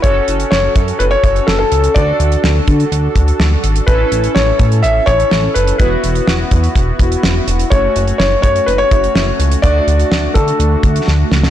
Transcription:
<<
  \new Staff \with { instrumentName = "Grand piano" } { \time 4/4 \key fis \minor \tempo 4 = 125 cis''4 cis''4 b'16 cis''8. a'16 a'8. | d''4 r2. | b'4 cis''4 e''8 cis''4 b'8 | b'2. r4 |
cis''4 cis''8 cis''8 b'16 cis''4.~ cis''16 | d''4. a'4. r4 | }
  \new Staff \with { instrumentName = "Analog polysynth" } { \time 4/4 \key fis \minor <cis' fis' a'>1 | <d' fis' a'>1 | <cis' e' a'>1 | <b e' fis'>1 |
<a cis' fis'>1 | <a d' fis'>1 | }
  \new Staff \with { instrumentName = "Analog synth bass" } { \clef bass \time 4/4 \key fis \minor fis,,8 fis,,8 fis,,8 fis,8 fis,,8 fis,,8 fis,,8 cis,8 | d,8 d,8 d,8 d8 d,8 d,8 d,8 gis,,8 | a,,8 a,,8 a,,8 a,8 a,,8 a,,8 a,,8 fis,,8 | e,,8 e,,8 e,,8 e,8 e,,8 e,,8 e,,8 e,,8 |
fis,,8 fis,,8 fis,,8 fis,8 fis,,8 fis,,8 fis,,8 cis,8 | d,8 d,8 d,8 d8 d,8 d,8 d,8 cis,8 | }
  \new DrumStaff \with { instrumentName = "Drums" } \drummode { \time 4/4 <hh bd>8 hh16 hh16 sn8 <hh bd>16 hh16 hh8 <hh bd>16 hh16 sn8 hh16 hh16 | <hh bd>8 hh16 hh16 sn8 <hh bd>16 hh16 hh8 <hh bd>16 hh16 sn8 hh16 hh16 | <hh bd>8 hh16 hh16 sn8 <hh bd>16 hh16 hh8 <hh bd>16 hh16 sn8 hh16 hh16 | <hh bd>8 hh16 hh16 sn8 <hh bd>16 hh16 <hh bd>8 <hh bd>16 hh16 sn8 hh16 hh16 |
<hh bd>8 hh16 hh16 sn8 <hh bd>16 hh16 hh8 <hh bd>16 hh16 sn8 hh16 hh16 | <hh bd>8 hh16 hh16 sn8 <hh bd>16 hh16 hh8 <hh bd>16 hh16 sn8 sn16 sn16 | }
>>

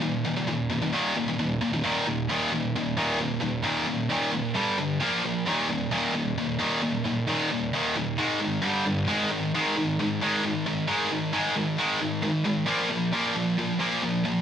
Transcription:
\new Staff \with { instrumentName = "Distorted electric guitar" } { \clef bass \time 4/4 \key ees \major \tempo 4 = 133 <ees, bes,>8 <ees, bes,>16 <ees, bes,>16 <ees, bes,>8 <ees, bes,>16 <ees, bes,>16 <ees, bes, ees>8 <ees, bes,>16 <ees, bes,>16 <ees, bes,>8 <ees, bes,>16 <ees, bes,>16 | <ees, bes, ees>8 <ees, bes,>8 <ees, bes, ees>8 <ees, bes,>8 <ees, bes,>8 <ees, bes, ees>8 <ees, bes,>8 <ees, bes,>8 | <ees, bes, ees>8 <ees, bes,>8 <ees, bes, ees>8 <ees, bes,>8 <g, d g>8 <g, d>8 <bes, f bes>8 <bes, f>8 | <ees, bes, ees>8 <ees, bes,>8 <ees, bes, ees>8 <ees, bes,>8 <ees, bes,>8 <ees, bes, ees>8 <ees, bes,>8 <ees, bes,>8 |
<ees, bes, ees>8 <ees, bes,>8 <ees, bes, ees>8 <ees, bes,>8 <aes, ees aes>8 <aes, ees>8 <g, d g>8 <g, d>8 | <aes, ees aes>8 <aes, ees>8 <aes, ees aes>8 <aes, ees>8 <aes, ees>8 <aes, ees aes>8 <aes, ees>8 <aes, ees>8 | <aes, ees aes>8 <aes, ees>8 <aes, ees aes>8 <aes, ees>8 <aes, ees aes>8 <aes, ees>8 <aes, ees>8 <aes, ees>8 | <bes, f bes>8 <bes, f>8 <bes, f bes>8 <bes, f>8 <bes, f>8 <bes, f bes>8 <bes, f>8 <bes, f>8 | }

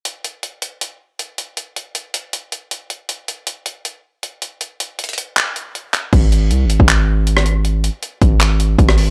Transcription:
<<
  \new Staff \with { instrumentName = "808-style bass" } { \clef bass \time 4/4 \key gis \phrygian \tempo 4 = 158 r1 | r1 | r1 | r1 |
gis,,4 bis,,16. gis,,16. gis,,2~ gis,,16~ | gis,,8. r8. gis,,4. gis,,4 | }
  \new DrumStaff \with { instrumentName = "Drums" } \drummode { \time 4/4 hh8 hh8 hh8 hh8 hh4 hh8 hh8 | hh8 hh8 hh8 hh8 hh8 hh8 hh8 hh8 | hh8 hh8 hh8 hh8 hh4 hh8 hh8 | hh8 hh8 hh32 hh32 hh32 hh32 hh8 <hc hh>8 hh8 hh8 <hc hh>8 |
<cymc hh bd>8 hh8 hh8 hh16 bd16 <hc hh>4 hh16 ss16 hh8 | hh8 hh8 hh8 <hh bd>8 <hc hh>8 hh8 <hh bd>16 ss16 hho8 | }
>>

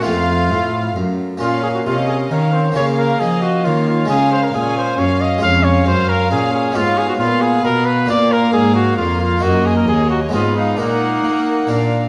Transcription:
<<
  \new Staff \with { instrumentName = "Violin section" } { \time 3/4 \key bes \minor \tempo 4 = 134 f''2 r4 | f''4 f''4 f''4 | f''2 f''4 | f''4 f''4 f''4 |
f''2 f''4 | \key ees \minor f''4 f''2 | f''2 f''4 | ees''2 ees''8 f''8 |
ges''2 f''8 r8 | }
  \new Staff \with { instrumentName = "Violin section" } { \time 3/4 \key bes \minor f''2 r4 | r4 ees''4 des''4 | f''4 ees''4 des''4 | f''4 aes''4 f''4 |
des''4 f''2 | \key ees \minor des''4 ces''2 | bes'2.~ | bes'4 des''4 ces''4 |
bes'2~ bes'8 r8 | }
  \new Staff \with { instrumentName = "Trumpet" } { \time 3/4 \key bes \minor f'2 r4 | f'8 aes'16 ges'16 f'8 aes'8 bes'8 c''8 | des''8 bes'8 aes'8 ges'8 f'8 f'8 | aes'8 c''16 bes'16 aes'8 c''8 des''8 ees''8 |
f''8 des''8 c''8 bes'8 aes'8 aes'8 | \key ees \minor f'8 aes'16 ges'16 f'8 aes'8 bes'8 ces''8 | d''8 bes'8 aes'8 ges'8 f'8 f'8 | ges'8 aes'16 bes'16 aes'8 ges'8 f'8 ees'8 |
bes2~ bes8 r8 | }
  \new Staff \with { instrumentName = "Viola section" } { \time 3/4 \key bes \minor a2~ a8 r8 | des'4 des'4 des'8 c'8 | bes2 bes4 | des'4 des'4 des'4 |
des'2 des'4 | \key ees \minor ces'4 ces'2 | bes2 bes4 | bes2 ces'4 |
ees'2 d'8 r8 | }
  \new Staff \with { instrumentName = "Harpsichord" } { \time 3/4 \key bes \minor <a c' f'>2. | <bes des' f'>2. | <bes des' f'>2. | <aes des' f'>2. |
<aes des' f'>2. | \key ees \minor <ces' ees' f'>2. | <bes d' f'>2. | <bes ees'>2 <aes ces' ees'>4 |
<bes ees'>2 <bes d'>4 | }
  \new Staff \with { instrumentName = "Harpsichord" } { \clef bass \time 3/4 \key bes \minor f,4 a,4 ges,4 | bes,4 c4 ees4 | des4 f4 ees4 | des4 bes,4 ges,4 |
f,4 ges,4 bes,4 | \key ees \minor aes,4 bes,4 ces4 | bes,4 aes,4 f,4 | ges,4 ees,4 aes,4 |
bes,4 bes4 bes,4 | }
  \new Staff \with { instrumentName = "Cello section" } { \clef bass \time 3/4 \key bes \minor f,4 a,4 ges,4 | bes,4 c4 ees4 | des4 f4 ees4 | des4 bes,4 ges,4 |
f,4 ges,4 bes,4 | \key ees \minor aes,4 bes,4 ces4 | bes,4 aes,4 f,4 | ges,4 ees,4 aes,4 |
bes,4 bes4 bes,4 | }
>>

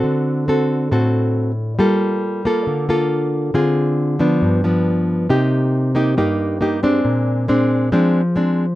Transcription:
\new Staff \with { instrumentName = "Nylon-string guitar" } { \time 4/4 \key g \minor \tempo 4 = 137 << { <c' fis' a'>4 <c' fis' a'>4 <c' fis' a'>4. r8 | <bes f' a'>4. <bes f' a'>4 <bes f' a'>4. | <c' f' aes'>4. <f b d'>4 <f b d'>4. | \key c \minor <bes ees' g'>4. <bes ees' g'>8 <bes ees' g'>4 <bes ees' g'>8 <aes c' d'>8~ |
<aes c' d'>4 <aes c' d'>4 <aes c' d'>8 r8 <aes c' d'>8 r8 | } \\ { d2 a,2 | g2 d2 | d2 g,2 | c2 g,2 |
bes,2 f2 | } >> }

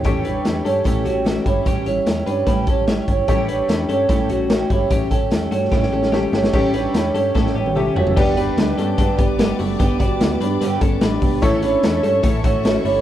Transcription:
<<
  \new Staff \with { instrumentName = "String section" } { \time 4/4 \key a \mixolydian \tempo 4 = 147 r1 | r1 | r1 | r1 |
r1 | <b' d'' d'''>1~ | <b' d'' d'''>1 | <a' cis'' e'' cis'''>1 | }
  \new Staff \with { instrumentName = "Upright piano" } { \time 4/4 \key a \mixolydian <g' a' cis''>1~ | <g' a' cis''>1 | <g' a' cis''>1~ | <g' a' cis''>2. <g' a' cis''>4 |
<g' a' cis''>2. <g' a' e''>4 | <d' g' b' d''>1~ | <d' g' b' d''>1 | <cis' e' a' cis''>1 | }
  \new Staff \with { instrumentName = "Clean electric guitar" } { \time 4/4 \key a \mixolydian <cis' g'>8 <d' b'>4 <cis' a'>8 <cis' a'>8 <a fis'>8 <a fis'>8 <g e'>8 | <cis' g'>8 <e' cis''>4 <d' b'>8 <e' b'>8 <cis' a'>8 <e' cis''>4 | <cis' g'>8 <d' b'>4 <cis' a'>8 <cis' a'>8 <a fis'>8 <a fis'>8 <g e'>8 | <cis' g'>8 <cis' a'>4 <a fis'>8 <cis' g'>8 <cis' a'>8 <cis' g'>4 |
<cis' g'>8 <d' b'>4 <cis' a'>8 <cis' a'>8 <b g'>8 <cis' g'>8 <a fis'>8 | <b g'>8 <d' b'>4 <cis' a'>8 <d' a'>8 <b g'>8 <b g'>8 <a fis'>8 | <b g'>8 <fis' d''>4 <d' b'>8 <d' b'>8 <cis' a'>8 <d' b'>4 | <a e'>8 <d' b'>4 <cis' a'>8 <cis' a'>8 <a fis'>8 <a fis'>8 <g e'>8 | }
  \new Staff \with { instrumentName = "Twelve-string acoustic guitar" } { \time 4/4 \key a \mixolydian <a, e g cis' g'>8 <g cis' g'>8 <e g cis' g'>8 <g cis' g'>8 <a, e g cis' g'>8 <g cis' g'>8 <e g cis' g'>8 <g cis' g'>8 | <a, e g cis' g'>8 <g cis' g'>8 <e g cis' g'>8 <g cis' g'>8 <a, e g cis' g'>8 <g cis' g'>8 <e g cis' g'>8 <g cis' g'>8 | <a, e g cis' g'>8 <g cis' g'>8 <e g cis' g'>8 <g cis' g'>8 <a, e g cis' g'>8 <g cis' g'>8 <e g cis' g'>8 <g cis' g'>8 | <a, e g cis' g'>8 <g cis' g'>8 <e g cis' g'>8 <g cis' g'>8 <a, e g cis' g'>8 <g cis' g'>8 <e g cis' g'>8 <g cis' g'>8 |
<a, e g cis' g'>8 <g cis' g'>8 <e g cis' g'>8 <g cis' g'>8 <a, e g cis' g'>8 <g cis' g'>8 <e g cis' g'>8 <g cis' g'>8 | <g, d g b d' g'>8 <g b d' g'>8 <g b d' g'>8 <g b d' g'>8 <g, d g b d' g'>8 <g b d' g'>8 <g b d' g'>8 <g b d' g'>8 | <g, d g b d' g'>8 <g b d' g'>8 <g b d' g'>8 <g b d' g'>8 <g, d g b d' g'>8 <g b d' g'>8 <g b d' g'>8 <g b d' g'>8 | <a, e a cis' a'>8 <a cis' a'>8 <e a cis' a'>8 <a cis' a'>8 <a, e a cis' a'>8 <a cis' a'>8 <e a cis' a'>8 <a cis' a'>8 | }
  \new Staff \with { instrumentName = "FM bass" } { \clef bass \time 4/4 \key a \mixolydian a,,4 e,8 g,8 a,8 a,,4 g,,8 | a,,4 e,8 g,8 a,8 a,,4 g,,8 | a,,4 e,8 g,8 a,8 a,,4 g,,8 | a,,4 e,8 g,8 a,8 a,,4 g,,8 |
a,,4 e,8 g,8 a,8 a,,4 fis,,8 | g,,4 d,8 g,8 g,8 g,,4 fis,,8 | g,,4 d,8 g,8 g,8 g,,8 a,,8 b,,8 | a,,4 e,8 g,8 a,8 a,,4 g,,8 | }
  \new DrumStaff \with { instrumentName = "Drums" } \drummode { \time 4/4 <hh bd>8 hh8 <hh sn>8 hh8 <hh bd>8 hh8 <hh sn>8 <hh bd>8 | <hh bd>8 hh8 <hh sn>8 hh8 <hh bd>8 <hh bd>8 <hh sn>8 <hh bd>8 | <hh bd>8 hh8 <hh sn>8 hh8 <hh bd>8 hh8 <hh sn>8 <hh bd>8 | <hh bd>8 <hh bd>8 <hh sn>8 hh8 <bd sn>16 sn8 sn16 sn8 sn16 sn16 |
<cymc bd>8 hh8 <hh sn>8 hh8 <bd sn>16 sn8 tommh16 toml8 tomfh16 tomfh16 | <cymc bd>8 hh8 <hh sn>8 hh8 <hh bd>8 <hh bd>8 <hh sn>8 hho8 | <hh bd>8 <hh bd>8 <hh sn>8 hh8 hh8 <hh bd>8 <hh sn>8 <hho bd>8 | <hh bd>8 hh8 <hh sn>8 hh8 <hh bd>8 <hh bd>8 <hh sn>8 hho8 | }
>>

